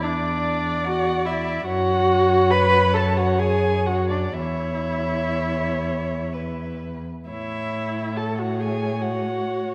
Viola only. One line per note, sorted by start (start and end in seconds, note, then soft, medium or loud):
0.03 0.88 D4 loud
0.87 1.27 F#4 loud
1.25 1.65 E4 medium
1.65 2.52 F#4 loud
2.51 2.95 B4 loud
2.94 3.19 A4 loud
3.17 3.40 F#4 medium
3.38 3.87 G#4 loud
3.86 4.12 F#4 medium
4.11 4.36 D4 medium
4.36 6.77 E4 medium
7.27 8.18 E4 medium
8.17 8.40 A4 medium
8.39 8.61 F#4 medium
8.59 9.01 G#4 medium
9.02 9.74 F#4 medium